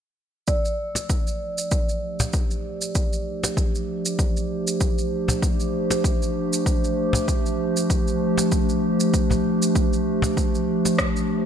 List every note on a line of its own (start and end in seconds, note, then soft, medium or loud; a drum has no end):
0.47 11.46 F3 medium
0.47 11.46 D5 medium
0.47 kick medium
0.47 shaker soft
0.65 shaker soft
0.74 11.46 A3 medium
0.84 11.46 C5 medium
0.95 cajon slap medium
0.95 shaker medium
1.09 11.46 D4 medium
1.09 kick medium
1.09 shaker medium
1.27 shaker soft
1.57 11.46 G4 medium
1.57 shaker medium
1.71 kick medium
1.71 shaker soft
1.89 shaker soft
2.20 cajon bass medium
2.20 shaker medium
2.33 kick loud
2.33 shaker soft
2.51 shaker soft
2.81 shaker medium
2.95 kick medium
2.95 shaker medium
3.13 shaker soft
3.44 cajon slap medium
3.44 shaker medium
3.57 kick medium
3.57 shaker medium
3.75 shaker soft
4.05 shaker medium
4.19 kick medium
4.19 shaker medium
4.37 shaker soft
4.67 shaker medium
4.81 kick medium
4.81 shaker soft
4.98 shaker soft
5.28 cajon bass medium
5.28 cajon slap soft
5.28 shaker medium
5.42 kick medium
5.42 shaker medium
5.60 shaker soft
5.91 cajon slap medium
5.91 shaker medium
6.04 kick loud
6.04 shaker medium
6.22 shaker soft
6.53 shaker medium
6.66 kick loud
6.66 shaker medium
6.84 shaker soft
7.13 cajon bass medium
7.13 shaker medium
7.28 kick loud
7.28 shaker medium
7.46 shaker soft
7.77 shaker medium
7.90 kick medium
7.90 shaker medium
8.08 shaker soft
8.38 cajon slap medium
8.38 shaker medium
8.52 kick medium
8.52 shaker medium
8.69 shaker soft
9.00 shaker medium
9.14 kick medium
9.14 shaker medium
9.30 cajon bass medium
9.30 cajon slap soft
9.30 shaker soft
9.62 shaker medium
9.75 kick loud
9.75 shaker soft
9.93 shaker soft
10.22 cajon bass medium
10.22 cajon slap soft
10.22 shaker medium
10.37 kick medium
10.37 shaker soft
10.55 shaker soft
10.85 cajon slap medium
10.85 shaker medium
10.98 kick medium
10.98 cross-stick medium
10.98 shaker medium
11.16 shaker soft